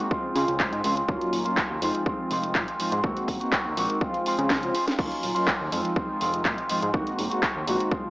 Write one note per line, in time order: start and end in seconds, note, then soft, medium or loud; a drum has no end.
0.00 0.10 D#3 medium
0.00 0.11 A#3 medium
0.00 0.11 C4 medium
0.00 0.12 F#4 medium
0.10 0.33 F3 medium
0.10 0.57 F3 medium
0.10 0.35 G#3 medium
0.10 0.36 C4 medium
0.10 0.57 F4 medium
0.10 0.36 F4 medium
0.10 kick loud
0.24 0.33 C#3 soft
0.35 0.45 C#3 medium
0.35 0.58 F3 medium
0.35 0.58 G#3 medium
0.35 0.59 C4 medium
0.35 0.60 F4 medium
0.35 open hi-hat medium
0.48 0.66 C#2 medium
0.48 closed hi-hat medium
0.59 0.82 F3 medium
0.59 0.72 F3 medium
0.59 0.83 G#3 medium
0.59 0.72 G#3 medium
0.59 0.84 C4 medium
0.59 0.72 C#4 medium
0.59 0.85 F4 loud
0.59 kick loud
0.59 clap loud
0.72 0.81 G#2 medium
0.72 closed hi-hat soft
0.83 1.02 C#2 medium
0.83 0.97 F3 medium
0.83 0.96 F3 medium
0.83 0.96 G#3 medium
0.83 0.97 G#3 medium
0.83 0.97 C4 medium
0.83 0.96 C4 medium
0.83 0.97 C#4 medium
0.83 0.97 F4 medium
0.83 0.95 F4 medium
0.83 open hi-hat medium
0.96 1.08 G#3 soft
0.96 1.09 C4 soft
0.96 1.08 F4 medium
0.96 closed hi-hat medium
1.08 1.18 D#2 medium
1.08 1.45 F#3 medium
1.08 1.43 F#3 medium
1.08 1.43 A#3 medium
1.08 1.46 A#3 medium
1.08 1.43 C#4 medium
1.08 1.45 C#4 medium
1.08 1.43 D#4 medium
1.08 1.43 F4 medium
1.08 1.44 F4 medium
1.08 kick loud
1.21 closed hi-hat soft
1.33 1.42 D#1 medium
1.33 open hi-hat medium
1.45 1.57 F#3 medium
1.45 1.57 A#3 medium
1.45 1.56 A#3 medium
1.45 1.57 C#4 medium
1.45 1.57 D#4 medium
1.45 1.57 F4 medium
1.45 1.57 F4 loud
1.45 closed hi-hat medium
1.57 1.81 F#3 medium
1.57 1.82 A#3 medium
1.57 1.83 F4 medium
1.57 kick loud
1.57 clap loud
1.70 1.79 D#2 medium
1.81 1.91 F2 medium
1.81 1.94 D#3 medium
1.81 2.03 F3 medium
1.81 2.03 G#3 medium
1.81 1.95 G#3 medium
1.81 2.03 C4 medium
1.81 1.94 C4 medium
1.81 2.04 D#4 medium
1.81 2.04 F4 medium
1.81 1.93 F4 medium
1.81 open hi-hat medium
1.95 2.06 G#3 soft
1.95 2.07 C4 medium
1.95 closed hi-hat medium
2.06 2.28 D#3 medium
2.06 2.52 G#3 medium
2.06 2.30 G#3 medium
2.06 2.31 C4 medium
2.06 2.52 D#4 medium
2.06 2.32 F4 medium
2.06 kick loud
2.30 2.56 F1 medium
2.30 2.54 D#3 medium
2.30 2.54 G#3 medium
2.30 2.55 C4 medium
2.30 2.56 F4 medium
2.30 open hi-hat medium
2.43 closed hi-hat medium
2.55 2.64 A#2 medium
2.55 2.78 D#3 medium
2.55 2.67 F3 medium
2.55 2.67 G#3 medium
2.55 2.79 G#3 medium
2.55 2.67 C4 medium
2.55 2.79 C4 medium
2.55 2.67 F4 medium
2.55 2.80 F4 medium
2.55 kick loud
2.55 clap loud
2.68 closed hi-hat medium
2.79 2.90 G#2 soft
2.79 2.92 D#3 medium
2.79 2.91 F3 medium
2.79 2.91 G#3 medium
2.79 2.92 G#3 medium
2.79 2.92 C4 medium
2.79 2.92 D#4 medium
2.79 2.92 F4 medium
2.79 2.90 F4 medium
2.79 open hi-hat medium
2.91 3.01 G#2 loud
2.91 3.03 G#3 soft
2.91 3.03 C4 medium
2.91 3.04 F4 medium
2.91 closed hi-hat medium
3.03 3.13 D#2 loud
3.03 3.41 D#3 medium
3.03 3.38 G#3 medium
3.03 3.38 A#3 medium
3.03 3.41 A#3 medium
3.03 3.38 C4 medium
3.03 3.41 C4 medium
3.03 3.38 D#4 medium
3.03 3.38 F#4 medium
3.03 3.39 F#4 medium
3.03 kick loud
3.16 3.26 D#1 soft
3.16 closed hi-hat soft
3.28 3.38 D#1 medium
3.28 kick medium
3.28 open hi-hat medium
3.40 3.52 G#3 medium
3.40 3.52 A#3 medium
3.40 3.52 C4 medium
3.40 3.52 D#4 medium
3.40 3.53 F#4 medium
3.40 3.52 F#4 loud
3.40 closed hi-hat medium
3.52 3.75 D#3 medium
3.52 3.77 C4 medium
3.52 3.78 F#4 medium
3.52 kick loud
3.52 clap loud
3.65 3.74 D#2 medium
3.76 3.86 A#1 medium
3.76 4.00 D#3 medium
3.76 3.98 G#3 medium
3.76 3.99 A#3 medium
3.76 4.01 A#3 medium
3.76 3.99 C4 medium
3.76 4.01 C4 medium
3.76 3.99 D#4 medium
3.76 3.99 F#4 medium
3.76 4.03 F#4 medium
3.76 open hi-hat loud
3.90 closed hi-hat medium
4.01 4.24 F3 medium
4.01 4.36 F3 medium
4.01 4.36 G#3 medium
4.01 4.25 G#3 medium
4.01 4.36 C4 medium
4.01 4.26 C4 medium
4.01 4.36 F4 medium
4.01 4.27 F4 medium
4.01 kick loud
4.14 closed hi-hat soft
4.25 4.48 F3 medium
4.25 4.49 G#3 medium
4.25 4.49 C4 medium
4.25 4.50 F4 medium
4.25 open hi-hat loud
4.38 4.70 C#3 medium
4.38 4.60 F3 medium
4.38 4.60 G#3 medium
4.38 4.60 C4 medium
4.38 4.60 C#4 medium
4.38 4.60 G#4 medium
4.38 closed hi-hat medium
4.49 4.72 F3 medium
4.49 4.73 G#3 medium
4.49 4.75 C4 medium
4.49 4.75 F4 medium
4.49 kick loud
4.49 snare loud
4.49 clap loud
4.62 4.74 F3 medium
4.62 4.74 G#3 medium
4.62 4.74 C4 medium
4.62 4.74 C#4 medium
4.62 4.74 F4 medium
4.62 closed hi-hat medium
4.74 4.87 F3 medium
4.74 4.87 G#3 medium
4.74 4.87 C4 medium
4.74 4.85 F4 medium
4.74 open hi-hat medium
4.86 4.98 G#3 soft
4.86 4.99 C4 medium
4.86 4.99 F4 medium
4.86 snare medium
4.86 closed hi-hat medium
4.98 5.08 D#2 medium
4.98 5.36 F#3 medium
4.98 5.33 F#3 medium
4.98 5.36 A#3 medium
4.98 5.33 A#3 medium
4.98 5.33 C#4 medium
4.98 5.35 C#4 medium
4.98 5.33 D#4 medium
4.98 5.33 F4 medium
4.98 kick loud
4.98 crash medium
5.12 closed hi-hat soft
5.23 5.33 D#1 medium
5.23 open hi-hat loud
5.35 5.47 F#3 medium
5.35 5.47 A#3 medium
5.35 5.46 A#3 soft
5.35 5.47 C#4 medium
5.35 5.47 D#4 medium
5.35 5.47 F4 medium
5.35 5.47 F4 loud
5.35 closed hi-hat medium
5.46 5.70 F#3 medium
5.46 5.72 F4 medium
5.46 kick loud
5.46 clap loud
5.60 5.69 D#2 medium
5.71 5.82 F2 medium
5.71 5.94 D#3 medium
5.71 5.93 F3 medium
5.71 5.94 G#3 medium
5.71 5.95 G#3 medium
5.71 5.94 C4 medium
5.71 5.96 C4 medium
5.71 5.94 D#4 medium
5.71 5.94 F4 medium
5.71 5.97 F4 medium
5.71 open hi-hat loud
5.85 closed hi-hat medium
5.96 6.42 F3 medium
5.96 6.42 G#3 medium
5.96 6.20 G#3 medium
5.96 6.20 C4 medium
5.96 6.43 F4 medium
5.96 6.21 F4 medium
5.96 kick loud
6.20 6.47 F1 medium
6.20 6.43 D#3 medium
6.20 6.44 G#3 medium
6.20 6.44 C4 medium
6.20 6.45 F4 medium
6.20 open hi-hat loud
6.34 closed hi-hat medium
6.44 6.55 A#2 medium
6.44 6.67 D#3 medium
6.44 6.68 G#3 medium
6.44 6.70 F4 loud
6.44 kick loud
6.44 clap loud
6.58 closed hi-hat soft
6.69 6.80 G#2 soft
6.69 6.82 D#3 medium
6.69 6.82 F3 medium
6.69 6.82 G#3 medium
6.69 6.82 C4 medium
6.69 6.82 D#4 medium
6.69 6.82 F4 medium
6.69 6.80 F4 medium
6.69 open hi-hat loud
6.81 6.91 G#2 loud
6.81 6.93 G#3 soft
6.81 6.93 C4 medium
6.81 6.94 F4 medium
6.81 closed hi-hat medium
6.93 7.03 D#2 loud
6.93 7.31 D#3 medium
6.93 7.28 G#3 medium
6.93 7.28 A#3 medium
6.93 7.31 A#3 medium
6.93 7.28 C4 medium
6.93 7.31 C4 medium
6.93 7.28 D#4 medium
6.93 7.28 F#4 medium
6.93 7.29 F#4 medium
6.93 kick loud
7.07 7.16 D#1 soft
7.07 closed hi-hat soft
7.18 7.28 D#1 medium
7.18 open hi-hat loud
7.30 7.42 G#3 medium
7.30 7.42 A#3 medium
7.30 7.42 A#3 soft
7.30 7.42 C4 medium
7.30 7.42 D#4 medium
7.30 7.43 F#4 medium
7.30 7.43 F#4 loud
7.30 closed hi-hat medium
7.42 7.65 D#3 medium
7.42 7.66 A#3 medium
7.42 7.67 C4 medium
7.42 7.68 F#4 loud
7.42 kick loud
7.42 clap loud
7.56 7.64 D#2 medium
7.66 7.77 A#1 medium
7.66 7.90 D#3 medium
7.66 7.89 G#3 medium
7.66 7.89 A#3 medium
7.66 7.91 A#3 medium
7.66 7.89 C4 medium
7.66 7.91 C4 medium
7.66 7.89 D#4 medium
7.66 7.89 F#4 loud
7.66 7.93 F#4 medium
7.66 open hi-hat loud
7.80 closed hi-hat medium
7.91 8.10 F3 medium
7.91 8.10 G#3 medium
7.91 8.10 C4 medium
7.91 8.10 F4 medium
7.91 kick loud
8.05 8.10 C#3 soft